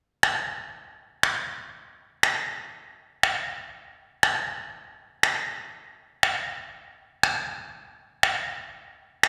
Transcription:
0.23 finger snap loud
1.23 finger snap loud
2.23 finger snap loud
3.23 finger snap loud
4.23 finger snap loud
5.23 finger snap loud
6.23 finger snap loud
7.23 finger snap loud
8.23 finger snap loud
9.23 finger snap loud

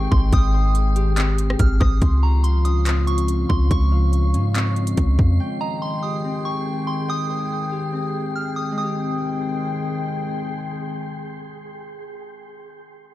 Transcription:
0.00 1.98 D#3 medium
0.00 1.98 G#3 medium
0.00 1.17 C4 medium
0.00 0.95 G4 medium
0.00 1.98 G#4 medium
0.00 0.63 D#5 medium
0.00 0.19 G5 loud
0.00 1.98 G5 loud
0.00 1.98 G5 medium
0.00 1.98 C7 medium
0.11 0.32 G#1 loud
0.11 0.31 C6 medium
0.11 kick loud
0.32 1.55 G#1 loud
0.32 1.88 G5 loud
0.32 1.56 D#6 loud
0.32 kick loud
0.32 closed hi-hat medium
0.54 2.29 C5 medium
0.75 closed hi-hat medium
0.96 3.31 G4 medium
0.96 closed hi-hat medium
1.17 2.29 C4 medium
1.17 clap loud
1.17 closed hi-hat medium
1.38 closed hi-hat medium
1.50 cross-stick loud
1.59 1.80 G#1 loud
1.59 1.80 F6 medium
1.59 kick loud
1.59 closed hi-hat medium
1.80 2.01 G#1 loud
1.80 2.00 D#6 medium
1.80 kick loud
1.80 cross-stick loud
2.02 3.46 C#2 loud
2.02 5.36 C#3 medium
2.02 5.36 F3 medium
2.02 8.74 G#3 medium
2.02 5.36 C#4 medium
2.02 5.36 F4 loud
2.02 5.36 F4 medium
2.02 3.32 C6 loud
2.02 8.74 C7 medium
2.02 kick loud
2.02 closed hi-hat medium
2.23 2.43 A#5 medium
2.23 3.49 C#6 medium
2.44 2.64 C6 medium
2.44 closed hi-hat medium
2.65 4.34 C#4 medium
2.65 3.05 D#6 medium
2.65 closed hi-hat medium
2.86 4.40 C4 medium
2.86 clap loud
2.86 closed hi-hat medium
3.07 3.47 C#6 medium
3.07 closed hi-hat soft
3.18 closed hi-hat medium
3.28 closed hi-hat medium
3.49 3.70 C#2 loud
3.49 3.69 C6 medium
3.49 kick medium
3.71 4.36 C#2 loud
3.71 4.97 C#6 loud
3.71 5.36 C#6 loud
3.71 kick loud
3.71 closed hi-hat medium
3.92 5.58 F5 medium
4.13 closed hi-hat medium
4.34 4.94 G#2 medium
4.34 6.30 C#4 medium
4.34 closed hi-hat medium
4.55 6.24 C4 medium
4.55 clap loud
4.55 closed hi-hat medium
4.76 closed hi-hat soft
4.87 closed hi-hat medium
4.97 5.18 C#2 loud
4.97 kick loud
4.97 closed hi-hat medium
5.19 5.39 F2 loud
5.19 kick medium
5.39 8.74 D#3 medium
5.39 8.74 G#4 medium
5.39 8.74 G5 loud
5.39 8.74 G5 medium
5.39 6.95 G5 loud
5.60 7.39 D#5 medium
5.60 5.81 A#5 medium
5.82 6.02 C6 medium
6.03 7.71 G4 medium
6.03 6.43 D#6 medium
6.24 7.93 C4 medium
6.45 6.85 C#6 medium
6.87 7.07 C6 medium
7.08 8.64 G5 loud
7.08 8.32 D#6 loud
7.30 9.28 C5 medium
7.72 8.83 G4 medium
7.93 8.77 C4 medium
8.36 8.56 F6 medium
8.56 8.76 D#6 medium
8.72 12.50 G#3 medium
8.78 12.56 D#3 medium
8.78 12.56 G#3 medium
8.78 12.56 C4 medium
8.78 12.57 G#4 medium
8.78 12.56 G5 loud
8.78 12.56 G5 medium
8.78 12.56 C6 medium
8.78 10.00 D#6 medium
8.84 12.62 G4 medium

